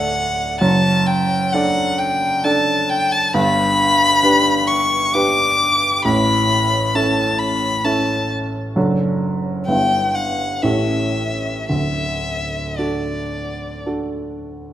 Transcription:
0.00 0.57 D1 medium
0.00 0.57 D2 medium
0.00 0.63 A3 medium
0.00 0.63 A4 soft
0.00 0.63 D5 medium
0.00 0.60 F#5 medium
0.60 3.30 F#1 medium
0.60 3.30 F#2 medium
0.60 1.08 A5 medium
1.07 1.54 G5 medium
1.53 2.40 D4 soft
1.53 2.40 A4 soft
1.53 2.41 D5 medium
1.53 2.00 F#5 medium
1.99 2.46 G5 medium
2.44 3.30 D4 soft
2.44 3.30 A4 soft
2.44 3.30 D5 medium
2.44 2.91 A5 medium
2.90 3.13 G5 medium
3.12 3.35 A5 medium
3.34 6.00 G1 medium
3.34 6.00 G2 medium
3.34 4.69 B5 loud
4.23 5.09 D4 soft
4.23 5.10 G4 soft
4.23 5.10 B4 medium
4.67 5.15 C#6 loud
5.14 6.01 D4 soft
5.14 6.01 G4 soft
5.14 6.01 B4 medium
5.14 6.04 D6 loud
6.05 8.72 A1 medium
6.05 8.72 A2 medium
6.05 6.97 B5 loud
6.95 7.80 C#4 soft
6.95 7.80 E4 soft
6.95 7.81 A4 soft
6.95 7.40 A5 medium
7.39 7.86 B5 medium
7.84 8.72 C#4 soft
7.84 8.72 E4 soft
7.84 8.72 A4 soft
7.84 8.30 A5 medium
8.76 9.65 F#1 soft
8.76 9.65 F#2 medium
8.76 9.64 D4 soft
8.76 9.64 F#4 soft
8.76 9.64 A4 soft
9.67 10.60 G1 soft
9.67 10.60 G2 soft
9.67 10.59 B3 soft
9.67 10.59 E4 soft
9.67 10.60 B4 soft
9.67 10.16 G5 medium
10.14 10.64 F#5 medium
10.63 11.65 A1 soft
10.63 11.66 A2 soft
10.63 11.65 C#4 soft
10.63 11.65 G4 soft
10.63 11.66 A4 soft
10.63 11.68 E5 medium
11.69 14.73 D1 soft
11.69 14.73 D2 soft
11.69 12.79 E5 medium
12.78 13.82 D4 soft
12.78 13.82 F#4 soft
12.78 13.83 A4 soft
12.78 13.86 D5 medium
13.86 14.73 D4 soft
13.86 14.73 F#4 soft
13.86 14.73 A4 soft

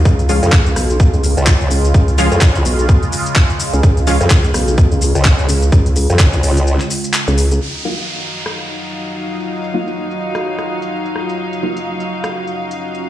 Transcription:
0.05 0.41 C#2 loud
0.05 7.57 C#3 medium
0.05 7.57 G#3 medium
0.05 7.57 F4 medium
0.05 kick loud
0.05 shaker soft
0.19 closed hi-hat medium
0.19 shaker soft
0.29 0.38 F3 medium
0.29 0.38 G#3 medium
0.29 0.38 C#4 medium
0.29 0.38 F4 medium
0.29 open hi-hat loud
0.29 shaker medium
0.43 0.51 F2 loud
0.43 closed hi-hat medium
0.43 shaker soft
0.52 0.75 C#2 loud
0.52 kick loud
0.52 clap loud
0.52 shaker soft
0.66 closed hi-hat medium
0.66 shaker soft
0.76 1.11 B1 medium
0.76 cross-stick medium
0.76 open hi-hat loud
0.76 shaker medium
0.90 closed hi-hat medium
0.90 shaker soft
1.00 kick loud
1.00 shaker soft
1.14 1.35 C#2 loud
1.14 closed hi-hat soft
1.14 shaker soft
1.24 open hi-hat loud
1.24 shaker medium
1.37 1.69 C#2 loud
1.37 closed hi-hat medium
1.37 shaker soft
1.47 kick loud
1.47 clap loud
1.47 shaker soft
1.61 closed hi-hat soft
1.61 shaker soft
1.71 1.93 C#2 loud
1.71 open hi-hat loud
1.71 shaker medium
1.84 closed hi-hat medium
1.84 shaker soft
1.94 2.30 C#2 loud
1.94 kick loud
1.94 shaker soft
2.08 closed hi-hat medium
2.08 shaker soft
2.18 2.27 F3 loud
2.18 2.27 G#3 medium
2.18 2.27 C#4 medium
2.18 2.27 F4 loud
2.18 open hi-hat loud
2.18 shaker medium
2.32 2.40 F2 loud
2.32 closed hi-hat medium
2.32 shaker soft
2.41 2.64 C#2 medium
2.41 kick loud
2.41 clap loud
2.41 shaker soft
2.55 closed hi-hat medium
2.55 shaker soft
2.65 3.00 B1 loud
2.65 open hi-hat loud
2.65 shaker medium
2.79 closed hi-hat medium
2.79 shaker soft
2.89 kick loud
2.89 shaker soft
3.03 closed hi-hat soft
3.03 shaker soft
3.12 open hi-hat loud
3.12 shaker medium
3.26 closed hi-hat medium
3.26 shaker soft
3.35 kick loud
3.35 clap loud
3.35 shaker soft
3.50 closed hi-hat soft
3.50 shaker soft
3.60 open hi-hat loud
3.60 shaker medium
3.73 3.82 C#2 loud
3.73 closed hi-hat medium
3.73 shaker soft
3.83 4.19 C#2 loud
3.83 kick loud
3.83 shaker soft
3.97 closed hi-hat medium
3.97 shaker soft
4.07 4.16 F3 medium
4.07 4.16 G#3 medium
4.07 4.16 C#4 medium
4.07 4.16 F4 medium
4.07 open hi-hat loud
4.07 shaker medium
4.21 4.29 F2 loud
4.21 closed hi-hat medium
4.21 shaker soft
4.30 4.53 C#2 medium
4.30 kick loud
4.30 clap loud
4.30 shaker soft
4.44 closed hi-hat medium
4.44 shaker soft
4.54 4.89 B1 loud
4.54 cross-stick medium
4.54 open hi-hat loud
4.54 shaker medium
4.68 closed hi-hat medium
4.68 shaker soft
4.78 kick loud
4.78 shaker soft
4.92 5.13 C#2 loud
4.92 closed hi-hat soft
4.92 shaker soft
5.01 open hi-hat loud
5.01 shaker medium
5.15 5.47 C#2 medium
5.15 closed hi-hat medium
5.15 shaker soft
5.25 kick loud
5.25 clap loud
5.25 shaker soft
5.39 closed hi-hat soft
5.39 shaker soft
5.49 5.71 C#2 loud
5.49 open hi-hat loud
5.49 shaker medium
5.62 closed hi-hat medium
5.62 shaker soft
5.72 6.08 C#2 medium
5.72 kick loud
5.72 shaker soft
5.86 closed hi-hat medium
5.86 shaker soft
5.96 open hi-hat loud
5.96 shaker medium
6.10 6.18 F2 medium
6.10 closed hi-hat medium
6.10 shaker soft
6.19 6.42 C#2 loud
6.19 kick loud
6.19 clap loud
6.19 shaker soft
6.33 closed hi-hat medium
6.33 shaker soft
6.43 6.78 C#2 loud
6.43 open hi-hat loud
6.43 shaker medium
6.57 closed hi-hat medium
6.57 shaker soft
6.67 shaker soft
6.80 clap soft
6.80 closed hi-hat soft
6.80 shaker soft
6.90 open hi-hat loud
6.90 shaker medium
7.04 closed hi-hat medium
7.04 shaker soft
7.14 clap loud
7.14 shaker soft
7.28 7.60 C#2 loud
7.28 closed hi-hat soft
7.28 shaker soft
7.38 open hi-hat loud
7.38 shaker medium
7.51 closed hi-hat medium
7.51 shaker soft
7.61 13.09 F#3 medium
7.61 13.09 D#4 medium
7.61 11.36 D#4 medium
7.61 13.09 F4 medium
7.61 crash medium
7.61 downlifter medium
7.75 closed hi-hat medium
7.82 13.09 F#3 medium
7.82 7.94 F#3 medium
7.82 7.94 A#3 medium
7.82 7.94 D#4 medium
7.82 7.94 F4 medium
7.82 13.09 F5 medium
7.99 closed hi-hat medium
8.22 closed hi-hat medium
8.46 cross-stick medium
8.46 closed hi-hat medium
8.69 closed hi-hat soft
8.93 closed hi-hat medium
9.17 closed hi-hat soft
9.40 closed hi-hat medium
9.64 closed hi-hat soft
9.74 9.83 F#3 medium
9.74 9.83 A#3 medium
9.74 9.83 D#4 medium
9.74 9.83 F4 loud
9.88 closed hi-hat medium
10.11 closed hi-hat soft
10.35 cross-stick medium
10.35 closed hi-hat medium
10.59 cross-stick medium
10.59 closed hi-hat soft
10.82 closed hi-hat medium
11.06 closed hi-hat soft
11.16 cross-stick medium
11.29 closed hi-hat medium
11.39 13.09 C#4 medium
11.53 closed hi-hat soft
11.63 11.72 F#3 medium
11.63 11.72 A#3 medium
11.63 11.72 D#4 medium
11.63 11.72 F4 medium
11.77 closed hi-hat medium
12.00 closed hi-hat soft
12.24 cross-stick medium
12.24 closed hi-hat medium
12.47 closed hi-hat soft
12.71 closed hi-hat medium
12.95 closed hi-hat soft

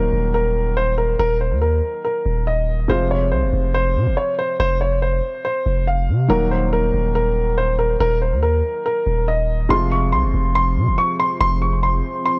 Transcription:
0.00 0.10 D#1 loud
0.00 2.85 D#3 medium
0.00 2.85 F#3 medium
0.00 2.86 A#3 medium
0.00 2.86 F#4 medium
0.00 0.32 A#4 medium
0.13 1.15 D#1 loud
0.34 0.74 A#4 medium
0.77 0.93 C5 medium
0.98 1.14 A#4 medium
1.19 1.53 D#1 loud
1.19 1.36 A#4 loud
1.41 1.57 C5 medium
1.51 1.82 D#2 loud
1.62 2.02 A#4 medium
2.05 2.44 A#4 medium
2.26 2.87 D#1 loud
2.47 2.87 D#5 medium
2.88 3.34 F1 loud
2.88 6.25 C3 medium
2.88 6.26 F3 medium
2.88 6.26 G#3 medium
2.88 6.27 F4 medium
2.88 3.06 C5 medium
3.11 3.27 C#5 medium
3.32 3.44 C2 loud
3.32 3.72 C5 medium
3.43 3.53 F1 loud
3.53 3.97 F1 loud
3.74 4.15 C5 medium
3.96 4.08 C3 loud
4.07 4.17 F1 loud
4.17 4.34 C#5 medium
4.39 4.55 C5 medium
4.60 5.21 F1 loud
4.60 4.76 C5 loud
4.81 4.97 C#5 medium
5.02 5.42 C5 medium
5.45 5.85 C5 medium
5.66 6.10 F1 loud
5.87 6.27 F5 medium
6.09 6.29 C3 loud
6.28 6.91 D#1 loud
6.28 9.66 D#3 medium
6.28 9.66 F#3 medium
6.28 9.67 A#3 medium
6.28 9.67 F#4 medium
6.28 6.46 A#4 loud
6.51 6.68 C5 medium
6.73 7.13 A#4 medium
6.94 7.96 D#1 loud
7.15 7.55 A#4 medium
7.58 7.74 C5 medium
7.79 7.95 A#4 medium
8.00 8.34 D#1 loud
8.00 8.17 A#4 loud
8.22 8.38 C5 medium
8.32 8.62 D#2 medium
8.43 8.83 A#4 medium
8.86 9.25 A#4 medium
9.07 9.68 D#1 loud
9.28 9.68 D#5 medium
9.69 10.14 F1 loud
9.69 12.39 C3 medium
9.69 12.39 F3 medium
9.69 12.39 G#3 medium
9.69 12.39 C4 medium
9.69 12.39 F4 medium
9.69 12.39 G#4 medium
9.69 12.39 C5 medium
9.69 9.87 C6 loud
9.92 10.08 C#6 medium
10.12 10.25 C2 loud
10.12 10.53 C6 medium
10.24 10.34 F1 loud
10.34 10.78 F1 loud
10.55 10.95 C6 loud
10.77 10.89 C3 loud
10.87 10.98 F1 loud
10.98 11.15 C#6 medium
11.20 11.36 C6 medium
11.41 12.02 F1 loud
11.41 11.57 C6 loud
11.62 11.78 C#6 medium
11.83 12.23 C6 medium
12.26 12.39 C6 medium

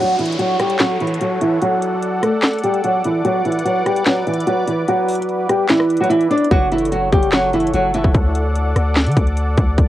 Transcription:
0.00 0.15 F#3 medium
0.00 0.14 F#4 loud
0.00 3.22 A4 medium
0.00 1.60 C#5 medium
0.00 3.22 F#5 medium
0.00 1.60 C#6 medium
0.00 downlifter medium
0.19 0.36 E3 medium
0.19 0.35 E4 medium
0.19 closed hi-hat medium
0.25 closed hi-hat medium
0.32 closed hi-hat medium
0.39 0.56 F#3 medium
0.39 0.55 F#4 medium
0.39 closed hi-hat medium
0.59 0.76 G3 medium
0.59 0.76 G4 medium
0.59 cross-stick medium
0.59 closed hi-hat medium
0.70 closed hi-hat medium
0.79 0.97 F#3 medium
0.79 0.96 F#4 medium
0.79 snare loud
0.79 clap medium
0.79 closed hi-hat medium
1.00 1.17 E3 medium
1.00 1.17 E4 medium
1.00 closed hi-hat soft
1.07 closed hi-hat medium
1.14 closed hi-hat medium
1.21 1.38 F#3 medium
1.21 1.37 F#4 medium
1.21 closed hi-hat medium
1.41 1.58 E3 medium
1.41 1.57 E4 medium
1.41 closed hi-hat medium
1.62 2.20 F#3 medium
1.62 2.19 F#4 loud
1.62 6.47 D5 medium
1.62 6.47 D6 medium
1.62 closed hi-hat medium
1.82 closed hi-hat medium
2.02 closed hi-hat medium
2.22 2.61 A3 medium
2.22 2.61 A4 medium
2.22 cross-stick medium
2.22 closed hi-hat medium
2.42 snare loud
2.42 clap medium
2.42 closed hi-hat soft
2.48 closed hi-hat soft
2.53 closed hi-hat medium
2.58 closed hi-hat medium
2.64 2.80 G3 medium
2.64 2.80 G4 medium
2.64 closed hi-hat medium
2.74 closed hi-hat soft
2.84 3.01 F#3 medium
2.84 3.00 F#4 medium
2.84 closed hi-hat medium
3.04 3.21 E3 medium
3.04 3.21 E4 medium
3.04 closed hi-hat medium
3.25 3.41 F#3 medium
3.25 3.41 F#4 loud
3.25 6.48 B4 medium
3.25 4.86 F#5 medium
3.25 closed hi-hat medium
3.45 3.62 E3 medium
3.45 3.62 E4 medium
3.45 closed hi-hat medium
3.52 closed hi-hat medium
3.59 closed hi-hat medium
3.65 3.82 F#3 medium
3.65 3.82 F#4 medium
3.65 closed hi-hat medium
3.86 4.03 G3 medium
3.86 4.02 G4 medium
3.86 cross-stick medium
3.86 closed hi-hat medium
3.96 closed hi-hat medium
4.06 4.23 F#3 medium
4.06 4.23 F#4 medium
4.06 snare loud
4.06 clap medium
4.06 closed hi-hat medium
4.27 4.44 E3 medium
4.27 4.43 E4 medium
4.27 closed hi-hat soft
4.34 closed hi-hat medium
4.40 closed hi-hat medium
4.47 4.64 F#3 medium
4.47 4.63 F#4 medium
4.47 closed hi-hat medium
4.67 4.84 E3 medium
4.67 4.84 E4 medium
4.67 closed hi-hat medium
4.88 5.46 F#3 medium
4.88 5.46 F#4 loud
4.88 closed hi-hat medium
5.08 closed hi-hat medium
5.08 open hi-hat medium
5.15 closed hi-hat medium
5.22 closed hi-hat medium
5.29 closed hi-hat medium
5.49 5.66 G3 medium
5.49 5.66 G4 medium
5.49 cross-stick medium
5.49 closed hi-hat medium
5.69 5.99 E3 medium
5.69 5.99 E4 medium
5.69 snare loud
5.69 clap medium
5.69 closed hi-hat medium
5.80 cross-stick loud
5.90 closed hi-hat medium
5.97 6.09 F#4 medium
5.97 closed hi-hat medium
6.01 6.09 F#3 medium
6.01 closed hi-hat medium
6.10 6.27 E3 medium
6.10 6.26 E4 medium
6.10 closed hi-hat medium
6.21 closed hi-hat soft
6.31 6.47 D4 medium
6.31 6.47 D5 medium
6.31 closed hi-hat medium
6.38 closed hi-hat medium
6.45 closed hi-hat medium
6.51 7.10 F#1 loud
6.51 6.68 F#3 medium
6.51 6.68 F#4 loud
6.51 9.75 A4 medium
6.51 8.13 C#5 medium
6.51 9.75 F#5 medium
6.51 8.13 C#6 medium
6.51 kick loud
6.51 closed hi-hat medium
6.72 6.89 E3 medium
6.72 6.88 E4 medium
6.72 closed hi-hat medium
6.79 closed hi-hat medium
6.85 closed hi-hat medium
6.92 7.09 F#3 medium
6.92 7.08 F#4 medium
6.92 closed hi-hat medium
7.13 7.71 F#1 loud
7.13 7.29 G3 medium
7.13 7.29 G4 medium
7.13 kick medium
7.13 cross-stick medium
7.13 closed hi-hat medium
7.23 closed hi-hat medium
7.32 7.50 F#3 medium
7.32 7.49 F#4 medium
7.32 snare loud
7.32 clap medium
7.32 closed hi-hat medium
7.53 7.70 E3 medium
7.53 7.70 E4 medium
7.53 closed hi-hat soft
7.60 closed hi-hat medium
7.67 closed hi-hat medium
7.74 8.03 F#1 loud
7.74 7.91 F#3 medium
7.74 7.90 F#4 medium
7.74 closed hi-hat medium
7.94 8.11 E3 medium
7.94 8.11 E4 medium
7.94 closed hi-hat medium
8.04 8.14 F#1 loud
8.04 kick medium
8.15 8.73 D2 loud
8.15 9.88 D5 medium
8.15 9.76 D6 medium
8.15 kick loud
8.15 closed hi-hat medium
8.35 closed hi-hat medium
8.55 closed hi-hat medium
8.76 9.08 D2 loud
8.76 cross-stick medium
8.76 closed hi-hat medium
8.96 snare loud
8.96 clap medium
8.96 closed hi-hat soft
9.01 closed hi-hat soft
9.06 9.16 D3 loud
9.06 closed hi-hat medium
9.12 closed hi-hat medium
9.17 9.56 D2 loud
9.17 kick loud
9.17 closed hi-hat medium
9.27 closed hi-hat soft
9.37 closed hi-hat medium
9.57 9.77 D2 loud
9.57 kick medium
9.57 closed hi-hat medium
9.78 9.88 B1 loud
9.78 9.88 B4 medium
9.78 9.88 F#5 medium
9.78 9.88 D6 medium
9.78 kick loud
9.78 closed hi-hat medium

